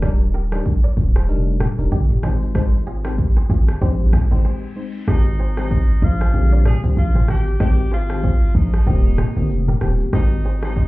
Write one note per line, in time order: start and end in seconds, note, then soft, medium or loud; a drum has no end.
0.00 0.61 D#1 loud
0.00 0.25 G3 loud
0.00 0.25 D4 medium
0.00 0.25 D#4 medium
0.00 0.25 A#4 loud
0.00 0.15 A#4 medium
0.00 0.15 D5 medium
0.00 kick loud
0.00 cross-stick loud
0.00 shaker medium
0.34 0.47 G4 medium
0.34 0.46 A#4 medium
0.34 shaker soft
0.52 0.72 G3 medium
0.52 0.72 D4 medium
0.52 0.72 D#4 medium
0.52 0.62 G#4 medium
0.52 0.72 A#4 medium
0.52 0.61 C5 medium
0.52 cross-stick loud
0.52 shaker medium
0.65 kick loud
0.65 shaker medium
0.84 0.93 A#4 medium
0.84 0.93 D5 medium
0.97 1.30 D#1 loud
0.97 kick medium
0.97 shaker soft
1.15 1.25 G#4 medium
1.15 1.24 C5 medium
1.15 cross-stick medium
1.15 shaker medium
1.28 1.64 F1 loud
1.28 1.74 G3 medium
1.28 1.74 D4 medium
1.28 1.74 D#4 medium
1.28 1.74 A#4 loud
1.28 shaker medium
1.60 1.73 G4 medium
1.60 1.73 A#4 medium
1.60 cross-stick loud
1.60 mid tom loud
1.60 shaker medium
1.78 1.88 D#1 medium
1.78 1.98 G3 medium
1.78 1.98 D4 medium
1.78 1.98 D#4 medium
1.78 1.98 A#4 medium
1.78 shaker medium
1.92 2.14 G1 medium
1.92 2.05 D#4 medium
1.92 2.04 G4 medium
1.92 kick medium
1.92 shaker medium
2.10 mid tom medium
2.23 3.13 G#1 loud
2.23 2.53 G#3 medium
2.23 2.53 C4 medium
2.23 2.53 D#4 medium
2.23 2.36 D#4 medium
2.23 2.36 G#4 medium
2.23 2.53 C5 loud
2.23 cross-stick medium
2.23 shaker soft
2.42 shaker medium
2.54 2.78 G#3 loud
2.54 2.78 C4 medium
2.54 2.78 D#4 medium
2.54 2.78 C5 loud
2.54 kick loud
2.54 cross-stick loud
2.54 shaker medium
2.86 3.00 F4 medium
2.86 2.99 G#4 medium
2.86 shaker soft
3.04 3.24 G#3 medium
3.04 3.24 C4 medium
3.04 3.24 D#4 medium
3.04 3.14 G4 medium
3.04 3.14 A#4 medium
3.04 3.24 C5 medium
3.04 cross-stick loud
3.04 shaker medium
3.18 kick loud
3.18 shaker medium
3.37 3.46 G#4 medium
3.37 3.45 C5 medium
3.50 3.72 G#1 loud
3.50 3.63 F4 medium
3.50 3.62 G#4 medium
3.50 kick medium
3.50 shaker soft
3.68 cross-stick medium
3.68 shaker medium
3.81 4.17 A#1 loud
3.81 4.27 G#3 medium
3.81 4.27 C4 medium
3.81 4.27 D#4 medium
3.81 3.94 D#4 medium
3.81 3.94 G4 medium
3.81 4.27 C5 loud
3.81 kick loud
3.81 reverse cymbal medium
3.81 shaker medium
4.13 4.26 F4 medium
4.13 4.25 G#4 medium
4.13 kick loud
4.13 cross-stick loud
4.13 mid tom loud
4.13 open hi-hat medium
4.13 shaker medium
4.31 4.41 G#1 medium
4.31 4.73 G#3 medium
4.31 4.73 C4 medium
4.31 4.73 D#4 medium
4.31 4.41 G4 medium
4.31 4.40 A#4 medium
4.31 4.73 C5 medium
4.31 shaker medium
4.45 4.66 G#4 medium
4.45 4.66 C5 medium
4.76 5.05 G#3 medium
4.76 5.06 C4 medium
4.76 5.06 D#4 medium
4.76 5.06 C5 medium
5.07 5.98 G#1 loud
5.07 5.30 D#3 loud
5.07 5.30 G#3 medium
5.07 5.30 C4 medium
5.07 5.55 D#4 loud
5.07 5.30 G4 loud
5.07 5.21 C5 medium
5.07 5.20 D#5 medium
5.07 kick loud
5.07 cross-stick loud
5.07 shaker medium
5.39 5.52 G#4 medium
5.39 5.52 C5 medium
5.39 shaker soft
5.57 5.77 D#3 medium
5.57 5.77 G#3 medium
5.57 5.77 C4 medium
5.57 6.00 D#4 loud
5.57 5.77 G4 medium
5.57 5.67 G#4 medium
5.57 5.67 C5 medium
5.57 cross-stick loud
5.57 shaker medium
5.71 5.84 C5 medium
5.71 5.83 D#5 medium
5.71 kick loud
5.71 shaker medium
6.02 6.25 A#1 loud
6.02 6.62 F4 loud
6.02 6.15 C5 medium
6.02 6.15 D#5 medium
6.02 kick medium
6.02 shaker medium
6.21 6.30 G#4 medium
6.21 6.30 C5 medium
6.21 cross-stick medium
6.21 shaker medium
6.34 6.69 A#1 loud
6.34 6.79 D3 medium
6.34 6.79 G#3 medium
6.34 6.79 C4 medium
6.34 6.80 G4 loud
6.34 shaker medium
6.52 6.62 A#4 medium
6.52 6.61 D5 medium
6.65 6.81 G#4 loud
6.65 6.78 A#4 medium
6.65 6.78 D5 medium
6.65 cross-stick loud
6.65 mid tom loud
6.65 shaker medium
6.84 6.93 C2 medium
6.84 7.03 D3 medium
6.84 7.03 G#3 medium
6.84 7.03 C4 medium
6.84 7.03 G4 medium
6.84 shaker medium
6.97 7.20 A#1 medium
6.97 7.27 F4 loud
6.97 kick medium
6.97 shaker medium
7.15 7.25 G#4 medium
7.15 7.24 C5 medium
7.15 mid tom medium
7.28 7.51 G#1 loud
7.28 7.41 G4 medium
7.28 7.59 G4 loud
7.28 7.41 A#4 medium
7.28 cross-stick medium
7.28 shaker soft
7.47 shaker medium
7.60 8.51 G#1 loud
7.60 7.83 D#3 medium
7.60 7.83 G#3 medium
7.60 7.83 C4 medium
7.60 7.83 G4 loud
7.60 7.91 G4 loud
7.60 7.73 C5 medium
7.60 7.72 D#5 loud
7.60 kick loud
7.60 cross-stick loud
7.60 shaker medium
7.92 8.52 F4 loud
7.92 8.04 G#4 medium
7.92 8.04 C5 medium
7.92 shaker soft
8.10 8.29 D#3 medium
8.10 8.29 G#3 medium
8.10 8.30 C4 medium
8.10 8.30 G4 medium
8.10 cross-stick loud
8.10 shaker medium
8.23 8.45 G#4 medium
8.23 8.45 C5 medium
8.23 kick loud
8.23 shaker medium
8.55 8.77 A#1 medium
8.55 9.78 D#4 medium
8.55 kick medium
8.55 shaker medium
8.73 cross-stick medium
8.73 shaker medium
8.86 9.22 D#1 loud
8.86 9.32 D#3 medium
8.86 9.32 A#3 medium
8.86 9.32 C4 medium
8.86 9.32 G4 loud
8.86 8.99 G4 medium
8.86 8.99 A#4 medium
8.86 kick loud
8.86 shaker medium
9.18 9.31 G#4 medium
9.18 9.30 C5 medium
9.18 cross-stick loud
9.18 mid tom loud
9.18 shaker medium
9.36 9.51 G1 medium
9.36 9.78 D#3 medium
9.36 9.78 A#3 medium
9.36 9.78 C4 medium
9.36 9.78 G4 medium
9.36 shaker medium
9.50 9.72 F1 loud
9.50 shaker medium
9.68 9.77 G4 medium
9.68 9.77 A#4 medium
9.68 mid tom medium
9.81 10.04 D#1 medium
9.81 10.11 D#3 medium
9.81 10.11 A#3 medium
9.81 10.11 C4 medium
9.81 10.11 G4 medium
9.81 9.94 G4 medium
9.81 9.94 A#4 medium
9.81 cross-stick medium
9.81 shaker soft
10.00 shaker medium
10.12 10.88 G#1 loud
10.12 10.35 D#3 loud
10.12 10.35 G#3 medium
10.12 10.36 C4 medium
10.12 10.60 D#4 loud
10.12 10.36 G4 loud
10.12 10.26 C5 medium
10.12 10.25 D#5 medium
10.12 kick loud
10.12 cross-stick loud
10.12 shaker medium
10.44 10.57 G#4 medium
10.44 10.57 C5 medium
10.44 shaker medium
10.62 10.82 D#3 medium
10.62 10.82 G#3 medium
10.62 10.82 C4 medium
10.62 10.88 D#4 medium
10.62 10.82 G4 medium
10.62 10.72 G#4 medium
10.62 10.72 C5 medium
10.62 cross-stick loud
10.62 shaker medium
10.76 10.88 C5 medium
10.76 10.88 D#5 medium
10.76 kick loud
10.76 shaker medium